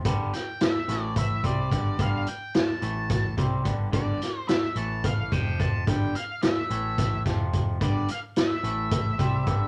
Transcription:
<<
  \new Staff \with { instrumentName = "Lead electric guitar" } { \time 7/8 \key a \phrygian \tempo 4 = 108 r8 g''8 e''4 e''8 d''4 | f''8 g''8 a''4. r4 | d''4 e''8 a''8 f''8 g''8 a''8 | g''8 f''8 e''4. r4 |
d''8 f''8 e''2~ e''8 | }
  \new Staff \with { instrumentName = "Clean electric guitar" } { \clef bass \time 7/8 \key a \phrygian <g, d g>8 r4 <a, e a>4 <c g c'>8 <g, d g>8 | <g, d g>8 r4 <a, e a>4 <c g c'>8 <g, d g>8 | <g, d g>8 r4 <a, e a>4 <f, c f>4 | <g, d g>8 r4 <a, e a>4 <f, c f>4 |
<g, d g>8 r4 <a, e a>4 <c g c'>8 <g, d g>8 | }
  \new Staff \with { instrumentName = "Picked electric bass" } { \clef bass \time 7/8 \key a \phrygian g,,8 r4 a,,4 c,8 g,,8 | g,,8 r4 a,,4 c,8 g,,8 | g,,8 r4 a,,4 f,,4 | g,,8 r4 a,,4 f,,4 |
g,,8 r4 a,,4 c,8 g,,8 | }
  \new DrumStaff \with { instrumentName = "Drums" } \drummode { \time 7/8 <hh bd>8 <hh sn>8 <hh sn>8 <hh sn>8 <hh bd>8 <hh bd>8 <hh bd>8 | <hh bd>8 hh8 <hh sn>8 hh8 <hh bd sn>8 <hh bd>8 <hh bd>8 | <hh bd>8 <hh sn>8 <hh sn>8 hh8 <hh bd>8 <hh bd>8 <hh bd>8 | <hh bd>8 hh8 <hh sn>8 hh8 <hh bd sn>8 <hh bd sn>8 <hh bd>8 |
<hh bd>8 hh8 <hh sn>8 hh8 <hh bd>8 <hh bd>8 <hh bd>8 | }
>>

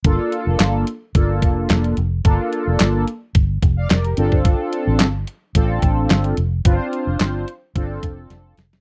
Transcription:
<<
  \new Staff \with { instrumentName = "Analog polysynth" } { \time 4/4 \key g \minor \tempo 4 = 109 << { r1 | r2 r8. <d'' f''>16 <bes' d''>16 <g' bes'>8 r16 | r1 | r1 | } \\ { <bes d' f' a'>4. r8 <bes d' f' a'>4. r8 | <bes d' f' a'>4. r2 <c' d' f' a'>8~ | <c' d' f' a'>4 r4 <c' d' f' a'>4. r8 | <c' d' f' b' c''>4. r8 <c' d' f' a'>4. r8 | } >> }
  \new Staff \with { instrumentName = "Fingered electric bass" } { \clef bass \time 4/4 \key g \minor g,,16 r8 f,,16 g,,8 r8 g,,8 f,,8 f,,8 f,,8 | g,,16 r8 f,,16 g,,8 r8 g,,8 f,,8 f,,8 g,,8~ | g,,16 r8 a,,16 g,,8 r8 a,,8 a,,8 g,,8 f,,8 | g,,16 r8 f,,16 g,,8 r8 g,,8 f,,8 f,,8 f,,8 | }
  \new DrumStaff \with { instrumentName = "Drums" } \drummode { \time 4/4 <hh bd>8 hh8 <hc hh sn>8 hh8 <hh bd>8 <hh bd>8 <hc hh sn>16 hh16 hh8 | <hh bd>8 hh8 <hc hh sn>8 hh8 <hh bd>8 <hh bd>8 <hc hh sn>16 hh16 hh16 bd16 | <hh bd>8 hh8 <hc hh sn>8 hh8 <hh bd>8 <hh bd>8 <hc hh sn>16 hh16 hh8 | <hh bd>8 hh8 <hc hh sn>8 hh8 <hh bd>8 <hh bd>8 <hh sn>8 <hh sn>16 sn16 | }
>>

